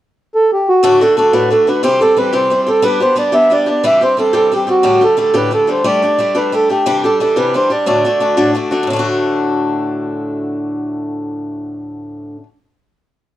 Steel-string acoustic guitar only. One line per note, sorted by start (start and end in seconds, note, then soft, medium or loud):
0.83 1.01 D2 medium
0.83 1.01 A2 medium
0.83 1.01 D3 medium
0.83 1.01 A3 medium
0.83 1.00 D4 medium
0.83 1.00 F#4 medium
1.01 1.16 D3 soft
1.01 1.16 A3 soft
1.01 1.17 D4 soft
1.01 1.17 F#4 medium
1.17 1.32 D3 soft
1.17 1.32 A3 soft
1.17 1.32 D4 soft
1.17 1.32 F#4 medium
1.33 1.52 D2 soft
1.33 1.51 A2 soft
1.33 1.49 D3 soft
1.33 1.50 A3 medium
1.33 1.51 D4 soft
1.33 1.51 F#4 soft
1.51 1.67 D3 soft
1.51 1.67 A3 soft
1.51 1.66 D4 soft
1.51 1.66 F#4 medium
1.67 1.83 D3 soft
1.67 1.83 A3 soft
1.67 1.83 D4 soft
1.67 1.83 F#4 soft
1.83 2.01 C3 medium
1.83 2.01 E3 medium
1.83 2.01 G3 medium
1.83 2.01 C4 medium
1.83 2.00 G4 medium
2.01 2.16 G3 soft
2.01 2.17 C4 medium
2.01 2.17 G4 soft
2.17 2.33 E3 soft
2.17 2.32 G3 soft
2.17 2.32 C4 medium
2.17 2.32 G4 soft
2.33 2.52 C3 soft
2.33 2.49 E3 soft
2.33 2.50 G3 soft
2.33 2.51 C4 medium
2.33 2.51 G4 medium
2.50 2.67 E3 soft
2.50 2.67 G3 soft
2.50 2.67 C4 soft
2.50 2.66 G4 soft
2.67 2.81 G3 soft
2.67 2.83 C4 soft
2.67 2.82 G4 soft
2.83 3.01 G3 medium
2.83 3.01 B3 medium
2.83 3.00 D4 medium
2.83 2.99 G4 medium
3.01 3.15 B3 soft
3.01 3.16 D4 soft
3.01 3.16 G4 soft
3.16 3.32 G3 soft
3.16 3.32 B3 medium
3.16 3.31 D4 medium
3.16 3.31 G4 medium
3.32 3.49 G3 soft
3.32 3.50 B3 soft
3.32 3.50 D4 soft
3.32 3.51 G4 medium
3.50 3.67 G3 soft
3.50 3.67 B3 soft
3.50 3.66 D4 soft
3.50 3.65 G4 medium
3.66 3.84 B3 soft
3.66 3.84 D4 soft
3.66 3.83 G4 soft
3.83 4.02 C3 medium
3.83 4.02 E3 medium
3.83 4.02 G3 medium
3.83 4.01 C4 medium
3.83 4.00 G4 medium
4.01 4.17 G3 soft
4.01 4.17 C4 soft
4.01 4.17 G4 soft
4.17 4.33 E3 soft
4.17 4.33 G3 soft
4.17 4.32 C4 medium
4.17 4.32 G4 medium
4.33 4.52 C3 soft
4.33 4.50 E3 soft
4.33 4.51 G3 medium
4.33 4.51 C4 soft
4.33 4.51 G4 medium
4.52 4.68 E3 soft
4.52 4.68 G3 soft
4.52 4.67 C4 soft
4.52 4.66 G4 medium
4.67 4.83 G3 soft
4.67 4.84 C4 soft
4.67 4.83 G4 soft
4.83 5.02 D2 medium
4.83 5.02 A2 medium
4.83 5.02 D3 medium
4.83 5.01 G3 medium
4.83 5.00 A3 medium
4.83 5.00 G4 medium
5.01 5.16 D3 soft
5.01 5.17 G3 soft
5.01 5.17 A3 soft
5.01 5.18 G4 soft
5.17 5.34 D3 soft
5.17 5.33 G3 medium
5.17 5.33 A3 medium
5.17 5.33 G4 medium
5.34 5.53 D2 soft
5.34 5.53 A2 medium
5.34 5.50 D3 soft
5.34 5.51 G3 soft
5.34 5.52 A3 soft
5.34 5.52 G4 medium
5.51 5.68 D3 soft
5.51 5.67 G3 soft
5.51 5.67 A3 soft
5.51 5.66 G4 soft
5.67 5.84 D3 soft
5.67 5.83 G3 soft
5.67 5.83 A3 soft
5.67 5.84 G4 soft
5.84 6.03 G3 medium
5.84 6.03 A3 medium
5.84 6.02 D4 medium
5.84 6.01 G4 medium
6.02 6.18 A3 soft
6.02 6.19 D4 soft
6.02 6.19 G4 soft
6.18 6.34 G3 soft
6.18 6.34 A3 soft
6.18 6.34 D4 medium
6.18 6.33 G4 medium
6.34 6.51 G3 soft
6.34 6.52 A3 soft
6.34 6.52 D4 medium
6.34 6.53 G4 soft
6.52 6.69 G3 soft
6.52 6.69 A3 soft
6.52 6.69 D4 soft
6.52 6.68 G4 soft
6.69 6.86 A3 soft
6.69 6.85 D4 soft
6.69 6.86 G4 soft
6.86 7.04 C3 medium
6.86 7.04 E3 medium
6.86 7.04 G3 medium
6.86 7.04 D4 medium
6.86 7.03 G4 medium
7.04 7.19 G3 soft
7.04 7.20 D4 soft
7.04 7.20 G4 soft
7.20 7.36 E3 soft
7.20 7.35 G3 medium
7.20 7.35 D4 medium
7.20 7.35 G4 soft
7.36 7.55 C3 soft
7.36 7.53 E3 medium
7.36 7.53 G3 medium
7.36 7.54 D4 soft
7.36 7.54 G4 medium
7.54 7.70 E3 soft
7.54 7.70 G3 soft
7.54 7.70 D4 soft
7.54 7.69 G4 soft
7.70 7.87 G3 soft
7.70 7.86 D4 soft
7.70 7.86 G4 soft
7.86 8.04 D2 medium
7.86 8.04 A2 medium
7.86 8.05 D3 medium
7.86 8.04 A3 medium
7.86 8.04 D4 medium
7.86 8.03 F#4 medium
8.04 8.19 D3 soft
8.04 8.20 A3 soft
8.04 8.20 D4 soft
8.04 8.20 F#4 soft
8.20 8.37 D3 soft
8.20 8.36 A3 soft
8.20 8.36 D4 soft
8.20 8.36 F#4 medium
8.37 8.55 D2 soft
8.37 8.55 A2 soft
8.37 8.53 D3 soft
8.37 8.54 A3 medium
8.37 8.54 D4 medium
8.37 8.55 F#4 medium
8.54 8.71 D3 soft
8.54 8.71 A3 soft
8.54 8.70 D4 soft
8.54 8.70 F#4 medium
8.71 8.88 D3 soft
8.71 8.88 A3 soft
8.71 8.87 D4 soft
8.71 8.87 F#4 soft
8.83 12.36 D2 medium
8.87 12.38 A2 medium
8.87 12.40 D3 medium
8.93 12.43 A3 medium
8.93 12.46 D4 medium
8.99 12.49 F#4 medium